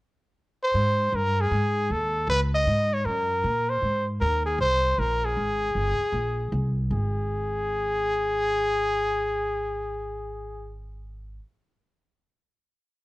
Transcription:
0.63 trumpet C5
0.74 upright bass G#2
1.12 upright bass G2, trumpet A#4
1.41 trumpet G#4
1.51 upright bass G#2
1.90 upright bass D#2, trumpet A4
2.28 upright bass C#2, trumpet B4
2.54 trumpet D#5
2.67 upright bass G#2
2.94 trumpet C#5
3.05 upright bass F#2, trumpet A#4
3.44 upright bass A#2
3.70 trumpet C5
3.82 upright bass G#2
4.20 upright bass D#2, trumpet A#4
4.46 trumpet G#4
4.59 upright bass C2, trumpet C5
4.98 upright bass A#1, trumpet A#4
5.25 trumpet G#4
5.36 upright bass G#1
5.75 upright bass G1
5.99 muted upright bass stroke
6.12 upright bass A#1
6.52 upright bass C2
6.91 upright bass G#1, trumpet G#4

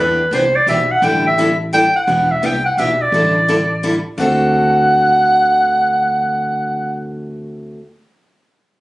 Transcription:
Already playing: upright bass E2, steel-string acoustic guitar E3
0.00 steel-string acoustic guitar B3 D4 G4, clarinet B4
0.31 upright bass C2, steel-string acoustic guitar E3 B3 D4 G4, clarinet C5
0.56 clarinet D5
0.66 upright bass B1, steel-string acoustic guitar E3 B3 D4 G4, clarinet E5
0.91 clarinet F#5
1.02 upright bass A1, steel-string acoustic guitar D3 G3 D4 E4 A4, clarinet G5
1.27 clarinet E5
1.38 steel-string acoustic guitar D3 G3 D4 E4 A4
1.73 steel-string acoustic guitar D3 G3 D4 E4 A4, clarinet G5
1.96 clarinet F#5
2.07 upright bass E1, steel-string acoustic guitar E3 B3 D4 G4
2.32 clarinet E5
2.42 upright bass C2, steel-string acoustic guitar E3 B3 D4 G4, clarinet G5
2.66 clarinet F#5
2.77 upright bass B1, steel-string acoustic guitar E3 B3 D4 G4, clarinet E5
3.02 clarinet D5
3.12 upright bass A1, steel-string acoustic guitar D3 G3 D4 E4 A4
3.48 steel-string acoustic guitar D3 G3 D4 E4 A4
3.83 steel-string acoustic guitar D3 G3 D4 E4 A4
4.18 upright bass D2, steel-string acoustic guitar D3 A3 C4 F#4 A4, clarinet F#5

